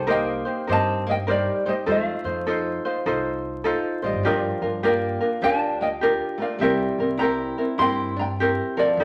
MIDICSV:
0, 0, Header, 1, 5, 480
1, 0, Start_track
1, 0, Tempo, 592885
1, 1514, Time_signature, 4, 2, 24, 8
1, 7320, End_track
2, 0, Start_track
2, 0, Title_t, "Ukulele"
2, 0, Program_c, 0, 24
2, 83, Note_on_c, 0, 75, 70
2, 87, Note_on_c, 0, 79, 97
2, 526, Note_off_c, 0, 75, 0
2, 574, Note_off_c, 0, 79, 0
2, 579, Note_on_c, 0, 75, 87
2, 586, Note_on_c, 0, 81, 104
2, 853, Note_off_c, 0, 75, 0
2, 885, Note_on_c, 0, 75, 63
2, 886, Note_off_c, 0, 81, 0
2, 898, Note_on_c, 0, 79, 90
2, 929, Note_off_c, 0, 75, 0
2, 939, Note_off_c, 0, 79, 0
2, 1049, Note_on_c, 0, 70, 65
2, 1059, Note_on_c, 0, 74, 85
2, 1328, Note_off_c, 0, 70, 0
2, 1362, Note_off_c, 0, 74, 0
2, 1366, Note_on_c, 0, 72, 70
2, 1370, Note_on_c, 0, 75, 74
2, 1410, Note_off_c, 0, 75, 0
2, 1411, Note_off_c, 0, 72, 0
2, 1541, Note_on_c, 0, 72, 69
2, 1551, Note_on_c, 0, 77, 79
2, 1976, Note_off_c, 0, 72, 0
2, 1980, Note_off_c, 0, 77, 0
2, 3280, Note_on_c, 0, 72, 49
2, 3288, Note_on_c, 0, 75, 63
2, 3433, Note_off_c, 0, 72, 0
2, 3449, Note_off_c, 0, 75, 0
2, 3449, Note_on_c, 0, 70, 65
2, 3453, Note_on_c, 0, 75, 82
2, 3542, Note_off_c, 0, 75, 0
2, 3542, Note_on_c, 0, 74, 82
2, 3889, Note_off_c, 0, 70, 0
2, 3923, Note_off_c, 0, 74, 0
2, 3932, Note_on_c, 0, 74, 66
2, 3936, Note_on_c, 0, 79, 80
2, 4370, Note_off_c, 0, 74, 0
2, 4398, Note_off_c, 0, 79, 0
2, 4401, Note_on_c, 0, 81, 109
2, 4410, Note_on_c, 0, 77, 91
2, 4687, Note_off_c, 0, 77, 0
2, 4709, Note_off_c, 0, 81, 0
2, 4712, Note_on_c, 0, 79, 72
2, 4717, Note_on_c, 0, 75, 67
2, 4757, Note_off_c, 0, 79, 0
2, 4761, Note_off_c, 0, 75, 0
2, 5196, Note_on_c, 0, 77, 68
2, 5199, Note_on_c, 0, 74, 48
2, 5349, Note_off_c, 0, 74, 0
2, 5354, Note_on_c, 0, 76, 79
2, 5366, Note_off_c, 0, 77, 0
2, 5374, Note_on_c, 0, 72, 70
2, 5810, Note_off_c, 0, 72, 0
2, 5821, Note_on_c, 0, 82, 95
2, 5847, Note_off_c, 0, 76, 0
2, 5854, Note_on_c, 0, 79, 72
2, 6290, Note_off_c, 0, 79, 0
2, 6303, Note_off_c, 0, 82, 0
2, 6306, Note_on_c, 0, 84, 108
2, 6325, Note_on_c, 0, 79, 83
2, 6604, Note_off_c, 0, 79, 0
2, 6624, Note_off_c, 0, 84, 0
2, 6633, Note_on_c, 0, 82, 73
2, 6644, Note_on_c, 0, 79, 64
2, 6677, Note_off_c, 0, 82, 0
2, 6687, Note_off_c, 0, 79, 0
2, 7119, Note_on_c, 0, 74, 95
2, 7120, Note_on_c, 0, 69, 58
2, 7320, Note_off_c, 0, 69, 0
2, 7320, Note_off_c, 0, 74, 0
2, 7320, End_track
3, 0, Start_track
3, 0, Title_t, "Ukulele"
3, 0, Program_c, 1, 24
3, 55, Note_on_c, 1, 70, 70
3, 60, Note_on_c, 1, 63, 81
3, 65, Note_on_c, 1, 67, 85
3, 67, Note_on_c, 1, 72, 87
3, 355, Note_off_c, 1, 72, 0
3, 364, Note_off_c, 1, 67, 0
3, 364, Note_on_c, 1, 72, 56
3, 371, Note_off_c, 1, 63, 0
3, 371, Note_off_c, 1, 70, 0
3, 374, Note_on_c, 1, 67, 54
3, 380, Note_on_c, 1, 63, 44
3, 538, Note_off_c, 1, 63, 0
3, 544, Note_on_c, 1, 70, 62
3, 545, Note_off_c, 1, 72, 0
3, 547, Note_off_c, 1, 67, 0
3, 547, Note_on_c, 1, 63, 68
3, 557, Note_on_c, 1, 67, 69
3, 563, Note_on_c, 1, 72, 69
3, 1017, Note_off_c, 1, 70, 0
3, 1027, Note_off_c, 1, 67, 0
3, 1027, Note_on_c, 1, 70, 72
3, 1030, Note_off_c, 1, 63, 0
3, 1031, Note_off_c, 1, 72, 0
3, 1034, Note_on_c, 1, 63, 76
3, 1034, Note_on_c, 1, 72, 73
3, 1037, Note_on_c, 1, 67, 84
3, 1330, Note_off_c, 1, 72, 0
3, 1337, Note_off_c, 1, 70, 0
3, 1338, Note_off_c, 1, 67, 0
3, 1340, Note_on_c, 1, 72, 51
3, 1341, Note_off_c, 1, 63, 0
3, 1347, Note_on_c, 1, 67, 47
3, 1351, Note_on_c, 1, 63, 42
3, 1504, Note_off_c, 1, 63, 0
3, 1507, Note_off_c, 1, 72, 0
3, 1508, Note_off_c, 1, 67, 0
3, 1509, Note_on_c, 1, 69, 76
3, 1512, Note_on_c, 1, 65, 85
3, 1514, Note_on_c, 1, 63, 76
3, 1516, Note_on_c, 1, 72, 83
3, 1812, Note_off_c, 1, 72, 0
3, 1818, Note_off_c, 1, 69, 0
3, 1820, Note_off_c, 1, 65, 0
3, 1821, Note_off_c, 1, 63, 0
3, 1822, Note_on_c, 1, 72, 54
3, 1831, Note_on_c, 1, 65, 43
3, 1841, Note_on_c, 1, 63, 39
3, 1993, Note_off_c, 1, 63, 0
3, 1995, Note_off_c, 1, 65, 0
3, 1995, Note_off_c, 1, 72, 0
3, 1995, Note_on_c, 1, 69, 76
3, 2002, Note_on_c, 1, 63, 80
3, 2005, Note_on_c, 1, 65, 72
3, 2010, Note_on_c, 1, 72, 86
3, 2298, Note_off_c, 1, 72, 0
3, 2302, Note_off_c, 1, 69, 0
3, 2305, Note_off_c, 1, 63, 0
3, 2306, Note_off_c, 1, 65, 0
3, 2307, Note_on_c, 1, 72, 64
3, 2315, Note_on_c, 1, 65, 53
3, 2323, Note_on_c, 1, 63, 48
3, 2469, Note_off_c, 1, 63, 0
3, 2475, Note_off_c, 1, 65, 0
3, 2477, Note_on_c, 1, 69, 65
3, 2478, Note_off_c, 1, 72, 0
3, 2478, Note_on_c, 1, 63, 71
3, 2485, Note_on_c, 1, 65, 69
3, 2490, Note_on_c, 1, 72, 81
3, 2938, Note_off_c, 1, 69, 0
3, 2946, Note_off_c, 1, 63, 0
3, 2948, Note_on_c, 1, 69, 78
3, 2954, Note_off_c, 1, 72, 0
3, 2955, Note_on_c, 1, 63, 97
3, 2956, Note_off_c, 1, 65, 0
3, 2959, Note_on_c, 1, 65, 90
3, 2964, Note_on_c, 1, 72, 93
3, 3248, Note_off_c, 1, 72, 0
3, 3258, Note_off_c, 1, 69, 0
3, 3258, Note_on_c, 1, 72, 44
3, 3260, Note_off_c, 1, 65, 0
3, 3261, Note_off_c, 1, 63, 0
3, 3270, Note_on_c, 1, 65, 44
3, 3273, Note_on_c, 1, 63, 40
3, 3433, Note_off_c, 1, 72, 0
3, 3434, Note_off_c, 1, 65, 0
3, 3437, Note_off_c, 1, 63, 0
3, 3438, Note_on_c, 1, 67, 70
3, 3441, Note_on_c, 1, 62, 69
3, 3443, Note_on_c, 1, 65, 78
3, 3448, Note_on_c, 1, 70, 72
3, 3730, Note_off_c, 1, 70, 0
3, 3732, Note_off_c, 1, 65, 0
3, 3740, Note_on_c, 1, 70, 50
3, 3741, Note_on_c, 1, 65, 49
3, 3743, Note_off_c, 1, 67, 0
3, 3744, Note_off_c, 1, 62, 0
3, 3753, Note_on_c, 1, 62, 41
3, 3902, Note_off_c, 1, 62, 0
3, 3910, Note_off_c, 1, 65, 0
3, 3910, Note_on_c, 1, 67, 71
3, 3912, Note_on_c, 1, 62, 84
3, 3913, Note_off_c, 1, 70, 0
3, 3920, Note_on_c, 1, 65, 84
3, 3923, Note_on_c, 1, 70, 85
3, 4205, Note_off_c, 1, 70, 0
3, 4212, Note_off_c, 1, 65, 0
3, 4214, Note_on_c, 1, 70, 52
3, 4219, Note_off_c, 1, 62, 0
3, 4219, Note_off_c, 1, 67, 0
3, 4221, Note_on_c, 1, 65, 53
3, 4227, Note_on_c, 1, 62, 50
3, 4387, Note_off_c, 1, 62, 0
3, 4389, Note_on_c, 1, 67, 55
3, 4390, Note_off_c, 1, 70, 0
3, 4394, Note_off_c, 1, 65, 0
3, 4397, Note_on_c, 1, 62, 59
3, 4403, Note_on_c, 1, 65, 60
3, 4404, Note_on_c, 1, 70, 60
3, 4864, Note_off_c, 1, 67, 0
3, 4867, Note_off_c, 1, 62, 0
3, 4867, Note_on_c, 1, 67, 80
3, 4871, Note_off_c, 1, 65, 0
3, 4877, Note_off_c, 1, 70, 0
3, 4877, Note_on_c, 1, 62, 80
3, 4880, Note_on_c, 1, 70, 93
3, 4881, Note_on_c, 1, 65, 82
3, 5170, Note_off_c, 1, 70, 0
3, 5176, Note_off_c, 1, 67, 0
3, 5179, Note_off_c, 1, 65, 0
3, 5180, Note_on_c, 1, 70, 43
3, 5181, Note_off_c, 1, 62, 0
3, 5189, Note_on_c, 1, 65, 45
3, 5196, Note_on_c, 1, 62, 43
3, 5351, Note_on_c, 1, 67, 72
3, 5353, Note_off_c, 1, 62, 0
3, 5353, Note_off_c, 1, 70, 0
3, 5356, Note_on_c, 1, 60, 71
3, 5357, Note_off_c, 1, 65, 0
3, 5363, Note_on_c, 1, 64, 84
3, 5364, Note_on_c, 1, 70, 80
3, 5656, Note_off_c, 1, 70, 0
3, 5658, Note_off_c, 1, 67, 0
3, 5660, Note_off_c, 1, 60, 0
3, 5660, Note_off_c, 1, 64, 0
3, 5666, Note_on_c, 1, 70, 58
3, 5670, Note_on_c, 1, 64, 46
3, 5679, Note_on_c, 1, 60, 42
3, 5821, Note_off_c, 1, 60, 0
3, 5827, Note_on_c, 1, 67, 80
3, 5829, Note_off_c, 1, 64, 0
3, 5831, Note_on_c, 1, 60, 77
3, 5833, Note_off_c, 1, 70, 0
3, 5839, Note_on_c, 1, 64, 75
3, 5843, Note_on_c, 1, 70, 78
3, 6128, Note_off_c, 1, 70, 0
3, 6132, Note_off_c, 1, 64, 0
3, 6135, Note_off_c, 1, 67, 0
3, 6137, Note_on_c, 1, 70, 58
3, 6138, Note_off_c, 1, 60, 0
3, 6142, Note_on_c, 1, 64, 51
3, 6154, Note_on_c, 1, 60, 46
3, 6305, Note_off_c, 1, 60, 0
3, 6308, Note_on_c, 1, 67, 50
3, 6311, Note_off_c, 1, 70, 0
3, 6313, Note_off_c, 1, 64, 0
3, 6314, Note_on_c, 1, 60, 66
3, 6324, Note_on_c, 1, 70, 66
3, 6325, Note_on_c, 1, 64, 65
3, 6797, Note_off_c, 1, 64, 0
3, 6797, Note_off_c, 1, 70, 0
3, 6798, Note_off_c, 1, 67, 0
3, 6800, Note_off_c, 1, 60, 0
3, 6801, Note_on_c, 1, 67, 83
3, 6803, Note_on_c, 1, 60, 77
3, 6809, Note_on_c, 1, 64, 92
3, 6813, Note_on_c, 1, 70, 90
3, 7092, Note_off_c, 1, 70, 0
3, 7100, Note_off_c, 1, 64, 0
3, 7101, Note_on_c, 1, 70, 50
3, 7102, Note_off_c, 1, 67, 0
3, 7103, Note_off_c, 1, 60, 0
3, 7110, Note_on_c, 1, 64, 44
3, 7119, Note_on_c, 1, 60, 39
3, 7272, Note_off_c, 1, 70, 0
3, 7276, Note_off_c, 1, 64, 0
3, 7281, Note_off_c, 1, 60, 0
3, 7284, Note_on_c, 1, 67, 69
3, 7286, Note_on_c, 1, 63, 83
3, 7288, Note_on_c, 1, 69, 80
3, 7293, Note_on_c, 1, 74, 81
3, 7320, Note_off_c, 1, 63, 0
3, 7320, Note_off_c, 1, 67, 0
3, 7320, Note_off_c, 1, 69, 0
3, 7320, Note_off_c, 1, 74, 0
3, 7320, End_track
4, 0, Start_track
4, 0, Title_t, "Steel-string acoustic guitar"
4, 0, Program_c, 2, 25
4, 80, Note_on_c, 2, 58, 81
4, 525, Note_off_c, 2, 58, 0
4, 562, Note_on_c, 2, 60, 80
4, 843, Note_off_c, 2, 60, 0
4, 862, Note_on_c, 2, 58, 84
4, 909, Note_off_c, 2, 58, 0
4, 1041, Note_on_c, 2, 55, 76
4, 1323, Note_off_c, 2, 55, 0
4, 1345, Note_on_c, 2, 55, 72
4, 1391, Note_off_c, 2, 55, 0
4, 1519, Note_on_c, 2, 57, 76
4, 1964, Note_off_c, 2, 57, 0
4, 3269, Note_on_c, 2, 55, 59
4, 3426, Note_off_c, 2, 55, 0
4, 3438, Note_on_c, 2, 53, 74
4, 3883, Note_off_c, 2, 53, 0
4, 3913, Note_on_c, 2, 58, 78
4, 4361, Note_off_c, 2, 58, 0
4, 4388, Note_on_c, 2, 62, 83
4, 4675, Note_off_c, 2, 62, 0
4, 4702, Note_on_c, 2, 58, 74
4, 4748, Note_off_c, 2, 58, 0
4, 5162, Note_on_c, 2, 57, 58
4, 5328, Note_off_c, 2, 57, 0
4, 5331, Note_on_c, 2, 55, 78
4, 5788, Note_off_c, 2, 55, 0
4, 5809, Note_on_c, 2, 64, 85
4, 6267, Note_off_c, 2, 64, 0
4, 6298, Note_on_c, 2, 64, 89
4, 6589, Note_off_c, 2, 64, 0
4, 6609, Note_on_c, 2, 62, 76
4, 6657, Note_off_c, 2, 62, 0
4, 7100, Note_on_c, 2, 53, 73
4, 7320, Note_off_c, 2, 53, 0
4, 7320, End_track
5, 0, Start_track
5, 0, Title_t, "Upright bass"
5, 0, Program_c, 3, 32
5, 0, Note_on_c, 3, 36, 84
5, 327, Note_off_c, 3, 36, 0
5, 555, Note_on_c, 3, 43, 93
5, 1179, Note_off_c, 3, 43, 0
5, 1510, Note_on_c, 3, 41, 88
5, 1711, Note_off_c, 3, 41, 0
5, 1814, Note_on_c, 3, 41, 84
5, 2241, Note_off_c, 3, 41, 0
5, 2475, Note_on_c, 3, 36, 84
5, 2986, Note_off_c, 3, 36, 0
5, 3261, Note_on_c, 3, 33, 81
5, 3339, Note_off_c, 3, 33, 0
5, 3343, Note_on_c, 3, 31, 81
5, 3423, Note_off_c, 3, 31, 0
5, 3426, Note_on_c, 3, 43, 92
5, 3628, Note_off_c, 3, 43, 0
5, 3736, Note_on_c, 3, 43, 80
5, 4162, Note_off_c, 3, 43, 0
5, 4385, Note_on_c, 3, 38, 91
5, 5011, Note_off_c, 3, 38, 0
5, 5342, Note_on_c, 3, 36, 94
5, 5544, Note_off_c, 3, 36, 0
5, 5654, Note_on_c, 3, 36, 72
5, 6079, Note_off_c, 3, 36, 0
5, 6307, Note_on_c, 3, 43, 93
5, 6931, Note_off_c, 3, 43, 0
5, 7263, Note_on_c, 3, 41, 90
5, 7320, Note_off_c, 3, 41, 0
5, 7320, End_track
0, 0, End_of_file